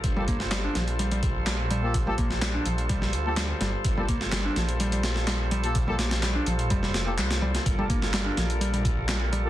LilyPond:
<<
  \new Staff \with { instrumentName = "Tonewheel organ" } { \time 4/4 \key c \major \tempo 4 = 126 << { c''1~ | c''1~ | c''1~ | c''1 |
bes'1 | } \\ { <g f' a'>1~ | <g f' a'>1~ | <g f' a'>1~ | <g f' a'>1~ |
<g f' a'>1 | } >> }
  \new Staff \with { instrumentName = "Brass ensemble" } { \time 4/4 \key c \major r16 <bes f' g' a'>16 r2. r16 <bes f' g' a'>16 | r16 <bes f' g' a'>16 r2 r16 <bes f' g' a'>16 r4 | r16 <bes f' g' a'>16 r2. r16 <bes f' g' a'>16 | r16 <bes f' g' a'>16 r2 r16 <bes f' g' a'>16 r4 |
r16 <bes f' g' a'>16 r2. r16 <bes f' g' a'>16 | }
  \new Staff \with { instrumentName = "Picked electric bass" } { \clef bass \time 4/4 \key c \major r16 g16 bes16 r16 g16 d'16 f16 r16 g16 g16 r8 g16 r16 g16 r16 | r16 g16 bes16 r16 g16 d'16 f16 r16 g16 g16 r8 g16 r16 g16 r16 | r16 g16 bes16 r16 g16 d'16 f16 r16 g16 g16 r8 g16 r16 g16 r16 | r16 g16 bes16 r16 g16 d'16 f16 r16 g16 g16 r8 g16 r16 g16 r16 |
r16 g16 bes16 r16 g16 d'16 f16 r16 g16 g16 r8 g16 r16 g16 r16 | }
  \new Staff \with { instrumentName = "Detuned saw bass" } { \clef bass \time 4/4 \key c \major g,,4. bes,,2~ bes,,8~ | bes,,4. bes,,4 d,4 g,,8 | g,,4. bes,,2~ bes,,8~ | bes,,4. bes,,8 f,,4 c,4 |
g,,4. bes,,2~ bes,,8 | }
  \new DrumStaff \with { instrumentName = "Drums" } \drummode { \time 4/4 <hh bd>8 <hh bd>16 sn16 <hc hh sn>8 <hh sn>16 hh16 hh16 hh16 <hh bd>8 <hc hh sn>8 hh8 | <hh bd>8 <hh bd>16 sn16 <hc hh sn>8 hh16 hh16 <hh bd>16 sn16 hh8 <hc hh sn>8 <hh sn>8 | <hh bd>8 <hh bd>16 sn16 <hc hh sn>8 <hh sn>16 hh16 hh16 hh16 <hh sn>16 sn16 <hc hh sn>8 hh16 hh16 | <hh bd>8 <hh sn>16 <hh sn>16 <hc hh sn>8 hh16 hh16 <hh bd>16 sn16 <hh sn>8 <hc hh sn>16 <hh sn>8 <hh sn>16 |
<hh bd>8 <hh bd>16 sn16 <hc hh sn>8 <hh sn>16 hh16 hh16 hh16 <hh bd>8 <hc hh sn>8 hh8 | }
>>